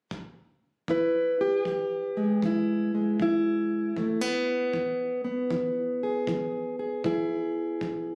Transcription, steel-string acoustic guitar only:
0.89 1.61 E3 medium
0.89 1.41 E4 soft
0.89 4.00 B4 soft
1.41 1.66 G4 medium
1.65 2.37 E3 medium
1.65 2.44 G4 medium
2.17 2.94 G#3 soft
2.43 3.15 E3 medium
2.43 3.21 E4 medium
2.95 3.97 G#3 soft
3.20 3.92 E3 medium
3.20 6.29 E4 medium
3.97 4.69 E3 medium
3.97 4.21 A3 medium
4.21 5.23 B3 soft
4.74 5.46 E3 medium
5.24 8.15 B3 soft
5.51 6.23 E3 medium
6.03 6.79 G#4 soft
6.28 7.00 E3 medium
6.79 7.06 G#4 soft
7.05 7.76 E3 medium
7.05 8.15 E4 medium
7.05 8.15 G#4 medium
7.82 8.15 E3 medium

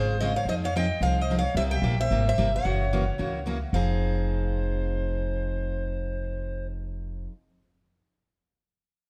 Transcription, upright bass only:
0.00 0.36 G#1 medium
0.45 0.90 F2 medium
1.01 1.45 C2 medium
1.55 1.77 C2 medium
1.82 2.06 A#1 medium
2.11 2.34 G#1 medium
2.38 2.61 G1 medium
2.65 3.09 F#1 medium
3.19 3.63 C#2 medium
3.73 7.26 F1 medium

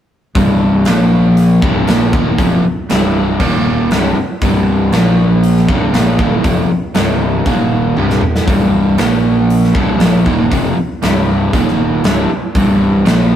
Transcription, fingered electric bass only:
0.35 0.83 C1 loud
0.86 1.58 A#1 medium
1.62 1.86 C1 medium
1.87 2.11 A#1 medium
2.13 2.37 D#1 medium
2.38 2.62 F1 medium
2.65 muted fingered electric bass stroke soft
2.91 3.38 C1 medium
3.40 3.87 D#1 medium
3.92 4.15 C1 medium
4.17 muted fingered electric bass stroke soft
4.42 4.89 C1 medium
4.92 5.65 A#1 medium
5.69 5.93 C1 medium
5.94 6.18 A#1 medium
6.19 6.43 D#1 medium
6.44 6.69 F1 medium
6.69 muted fingered electric bass stroke soft
6.95 7.43 C1 medium
7.46 7.94 D#1 medium
7.97 8.21 C1 medium
8.23 muted fingered electric bass stroke soft
8.48 8.95 C1 medium
8.99 9.71 A#1 medium
9.75 9.99 C1 medium
10.00 10.24 A#1 medium
10.26 10.50 D#1 medium
10.52 10.75 F1 loud
10.77 muted fingered electric bass stroke soft
11.02 11.50 C1 medium
11.53 12.00 D#1 medium
12.05 12.28 C1 medium
12.31 muted fingered electric bass stroke soft
12.55 13.02 C1 medium
13.06 13.36 A#1 medium

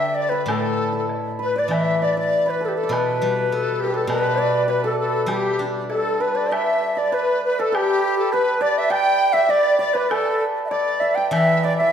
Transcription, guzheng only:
0.00 1.08 D3 medium
0.46 2.31 A2 medium
1.68 3.50 E3 soft
2.89 4.06 B2 medium
3.22 4.39 G3 medium
3.52 4.70 B3 soft
4.07 5.89 B2 medium
5.26 7.13 G3 medium
5.59 6.83 D4 medium
11.31 11.92 E3 medium

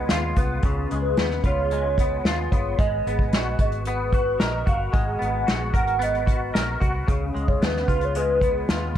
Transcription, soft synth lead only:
0.00 0.34 B4 medium
1.02 1.43 B4 medium
1.46 2.26 C#5 medium
2.25 2.53 B4 medium
2.51 2.78 C#5 medium
2.79 3.55 D#5 loud
3.61 3.72 D#5 medium
3.86 4.43 B4 loud
4.41 4.67 D#5 loud
4.69 4.80 F5 medium
4.94 5.70 F#5 loud
5.76 6.04 F#5 loud
6.03 6.55 D#5 loud
7.48 7.66 C#5 loud
7.65 8.06 B4 loud
8.05 8.18 C#5 loud
8.17 8.96 B4 loud

